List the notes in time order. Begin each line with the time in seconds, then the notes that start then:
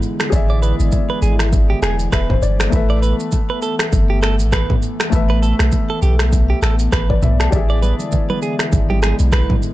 Already playing: D3 E3 G#3 B3 E4 G#4 D5 E5
0.02 shaker
0.20 finger snap, cross-stick, shaker
0.30 A1 G#4 D5, kick, shaker
0.35 E5
0.50 D5
0.62 B4, shaker
0.80 G#1, shaker
0.92 kick, shaker
1.10 B4
1.22 G#1 G#4, shaker
1.39 finger snap, cross-stick, shaker
1.53 kick, shaker
1.70 G4
1.82 E1 G#4 G#5, finger snap, cross-stick, shaker
1.99 shaker
2.12 E1 B4 E5, finger snap, kick, cross-stick, shaker
2.30 C5, kick, mid tom
2.42 G1 D5, shaker
2.60 finger snap, cross-stick, shaker
2.70 A1 A3 A4 B4, kick, shaker
2.75 E5
2.90 D5
3.02 B4, shaker
3.20 shaker
3.32 kick, shaker
3.50 B4
3.62 A4, shaker
3.79 finger snap, cross-stick, shaker
3.93 G1, kick, shaker
4.10 G4
4.22 A4, finger snap, cross-stick, shaker
4.39 A1, shaker
4.52 B4, finger snap, kick, cross-stick, shaker
4.70 kick, mid tom
4.82 shaker
5.00 finger snap, cross-stick, shaker
5.10 A1 A3 A4 B4, kick, shaker
5.15 E5
5.30 B4
5.42 A4, shaker
5.59 B1, finger snap, cross-stick, shaker
5.72 kick, shaker
5.90 A4
6.02 B1 G4, shaker
6.19 finger snap, cross-stick, shaker
6.33 kick, shaker
6.50 G4
6.62 A1 A4, finger snap, cross-stick, shaker
6.79 shaker
6.92 A1 B4, finger snap, kick, cross-stick, shaker
7.10 B4 D5, kick
7.22 B1 E5, mid tom, shaker
7.40 A5, finger snap, cross-stick, shaker
7.50 A1 D3 G#3 E4 G4 D5, kick, low conga, shaker
7.55 G#4 E5
7.70 D5
7.82 B4, high conga, shaker
8.00 high conga, shaker
8.12 kick, low conga, shaker
8.30 B4, high conga
8.42 G#4, shaker
8.59 finger snap, cross-stick, shaker
8.72 G#1, kick, low conga, shaker
8.90 G4, high conga
9.02 G#4, finger snap, cross-stick, high conga, shaker
9.19 B1, shaker
9.32 B4, finger snap, kick, cross-stick, shaker
9.50 kick, mid tom, high conga
9.62 shaker